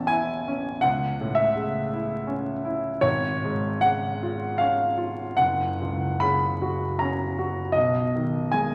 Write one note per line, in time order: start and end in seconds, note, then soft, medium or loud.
0.00 0.82 A1 soft
0.00 0.88 E2 soft
0.00 0.89 E3 soft
0.00 0.34 C#4 soft
0.00 0.89 E5 medium
0.00 0.89 A5 medium
0.07 0.70 E4 soft
0.07 0.84 G#5 medium
0.48 0.86 C#4 soft
0.81 2.99 C#2 soft
0.81 1.38 F#5 medium
1.21 1.79 A2 soft
1.35 3.02 E5 medium
1.56 2.14 C#3 soft
1.93 2.51 E4 soft
2.27 2.88 C#4 soft
2.65 3.04 E4 soft
3.01 5.35 G#1 medium
3.01 3.84 C#5 medium
3.44 4.09 G#2 soft
3.81 4.46 C#3 soft
3.81 4.60 F#5 medium
4.23 4.84 F4 soft
4.58 5.23 C#4 soft
4.58 5.39 F5 medium
4.98 5.39 F4 soft
5.37 7.70 F#1 soft
5.37 6.23 F#5 medium
5.81 6.48 C#2 soft
6.20 6.84 C#3 soft
6.20 6.98 B5 medium
6.62 7.22 F#4 soft
6.99 7.60 C#4 soft
6.99 7.75 A#5 medium
7.39 7.76 F#4 soft
7.72 8.75 B1 soft
7.72 8.53 D#5 medium
8.16 8.75 D#3 soft
8.52 8.75 G#3 soft
8.52 8.75 G#4 soft
8.52 8.75 G#5 medium